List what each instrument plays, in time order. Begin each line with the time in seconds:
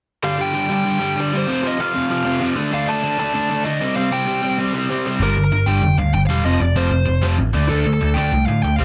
0.23 overdriven electric guitar G2 D3 G3, lead electric guitar F5
0.39 overdriven electric guitar G2 D3 G3, lead electric guitar G5
0.54 overdriven electric guitar G2 D3 G3
0.69 overdriven electric guitar G2 D3 G3, lead electric guitar G5
0.85 overdriven electric guitar G2 D3 G3
1.00 overdriven electric guitar G2 D3 G3
1.17 overdriven electric guitar G2 D3 G3, lead electric guitar D5
1.33 overdriven electric guitar G2 D3 G3, lead electric guitar C5
1.47 overdriven electric guitar F2 C3 F3
1.63 overdriven electric guitar F2 C3 F3, lead electric guitar D#5
1.78 overdriven electric guitar F2 C3 F3, lead electric guitar F5
1.94 overdriven electric guitar F2 C3 F3
2.09 overdriven electric guitar F2 C3 F3
2.25 overdriven electric guitar F2 C3 F3
2.40 overdriven electric guitar F2 C3 F3
2.56 overdriven electric guitar D3 A3 D4
2.71 overdriven electric guitar D3 A3 D4, lead electric guitar F5
2.87 overdriven electric guitar D3 A3 D4, lead electric guitar A5
3.04 overdriven electric guitar D3 A3 D4
3.18 overdriven electric guitar D3 A3 D4, lead electric guitar A5
3.34 overdriven electric guitar D3 A3 D4
3.50 overdriven electric guitar D3 A3 D4
3.64 overdriven electric guitar D3 A3 D4, lead electric guitar D#5
3.81 overdriven electric guitar C3 G3 C4
3.96 overdriven electric guitar C3 G3 C4, lead electric guitar F5
4.11 overdriven electric guitar C3 G3 C4, lead electric guitar G5
4.26 overdriven electric guitar C3 G3 C4
4.42 overdriven electric guitar C3 G3 C4
4.58 overdriven electric guitar C3 G3 C4
4.73 overdriven electric guitar C3 G3 C4
4.89 overdriven electric guitar C3 G3 C4
5.06 overdriven electric guitar C3 G3 C4
5.20 picked electric bass G1, overdriven electric guitar G2 D3 G3, lead electric guitar A#4
5.36 picked electric bass G1, overdriven electric guitar G2 D3
5.45 lead electric guitar A#4
5.51 picked electric bass G1, overdriven electric guitar G2 D3
5.66 picked electric bass G1, overdriven electric guitar G2 D3 G3, lead electric guitar G5
5.82 picked electric bass F1, overdriven electric guitar G2 D3
5.98 picked electric bass D2, overdriven electric guitar G2 D3, lead electric guitar F5
6.13 picked electric bass G1, overdriven electric guitar G2 D3, lead electric guitar G5
6.27 picked electric bass E1, overdriven electric guitar G2 D3 G3, lead electric guitar F5
6.43 picked electric bass F1, overdriven electric guitar F2 C3 F3, lead electric guitar D#5
6.60 picked electric bass F1, overdriven electric guitar F2 C3, lead electric guitar D5
6.76 picked electric bass F1, overdriven electric guitar F2 C3 F3, lead electric guitar C5
6.91 picked electric bass F1, overdriven electric guitar F2 C3
7.06 picked electric bass F1, overdriven electric guitar F2 C3
7.23 picked electric bass F1, overdriven electric guitar F2 C3 F3
7.39 picked electric bass A1, overdriven electric guitar F2 C3
7.54 picked electric bass D2, overdriven electric guitar D3 A3 D4
7.69 picked electric bass D2, overdriven electric guitar D3 A3 D4, lead electric guitar A4
7.86 picked electric bass D2, overdriven electric guitar D3 A3
7.94 lead electric guitar A4
8.01 picked electric bass D2, overdriven electric guitar D3 A3
8.14 picked electric bass D2, overdriven electric guitar D3 A3 D4, lead electric guitar G5
8.32 picked electric bass C2, overdriven electric guitar D3 A3
8.46 picked electric bass A2, overdriven electric guitar D3 A3, lead electric guitar F5
8.62 picked electric bass D2, overdriven electric guitar D3 A3, lead electric guitar G5
8.76 picked electric bass C2, overdriven electric guitar C3 G3 C4, lead electric guitar F5